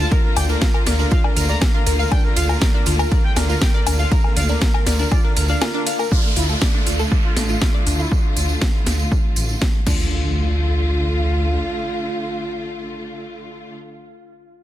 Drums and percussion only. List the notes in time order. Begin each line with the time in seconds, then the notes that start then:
0.11 kick, ride, tambourine
0.36 open hi-hat, ride, tambourine, low woodblock
0.49 tambourine
0.61 kick, snare, ride, tambourine
0.74 low woodblock
0.86 snare, open hi-hat, ride, tambourine
0.99 tambourine
1.11 kick, ride, tambourine
1.24 low woodblock
1.37 open hi-hat, ride, tambourine
1.49 tambourine
1.62 kick, snare, ride, low woodblock
1.86 open hi-hat, ride, tambourine
2.00 tambourine
2.11 kick, ride, tambourine, low woodblock
2.36 open hi-hat, ride, tambourine
2.49 tambourine, low woodblock
2.62 kick, snare, ride
2.86 open hi-hat, ride, tambourine
2.99 tambourine, low woodblock
3.12 kick, ride, tambourine
3.36 snare, open hi-hat, ride, tambourine, low woodblock
3.50 tambourine
3.62 kick, snare, ride, tambourine
3.87 open hi-hat, ride, tambourine, low woodblock
4.00 tambourine
4.12 kick, ride, tambourine
4.24 low woodblock
4.37 open hi-hat, ride, tambourine
4.49 tambourine
4.62 kick, snare, ride
4.74 low woodblock
4.87 snare, open hi-hat, ride, tambourine
4.99 tambourine
5.12 kick, ride, tambourine, low woodblock
5.37 open hi-hat, ride, tambourine
5.48 tambourine
5.61 snare, ride, tambourine, low woodblock
5.87 open hi-hat, ride, tambourine
5.99 tambourine, low woodblock
6.11 kick, tambourine
6.36 open hi-hat, tambourine
6.49 tambourine
6.61 kick, snare, tambourine
6.87 open hi-hat, tambourine
6.99 tambourine
7.12 kick, tambourine
7.37 snare, open hi-hat, tambourine
7.49 tambourine
7.62 kick, snare
7.87 open hi-hat, tambourine
8.00 tambourine
8.12 kick, tambourine
8.36 open hi-hat, tambourine
8.49 tambourine
8.62 kick, snare, tambourine
8.86 snare, open hi-hat, tambourine
8.99 tambourine
9.12 kick, tambourine
9.36 open hi-hat, tambourine
9.49 tambourine
9.62 kick, snare
9.87 kick, crash, tambourine
9.99 tambourine